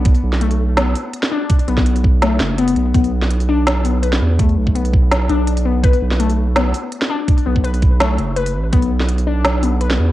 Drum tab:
HH |xo--xo--x-o-x---|xox-xo--x-x-xox-|xo--xo--x-o-x---|xo--xo--x-x-xo--|
SD |---o----o----o--|---o----o-o-----|---o----o----o--|--------o-------|
BD |o---------------|o--o--o---------|o---------------|o--o--o---------|

HH |xo--xo--x-o-x---|xo--xox-x-x-xo--|xo--xo--x-o-x---|
SD |---o----o----o--|--------o-------|---o----o----o--|
BD |o---------------|o--o--o---------|o---------------|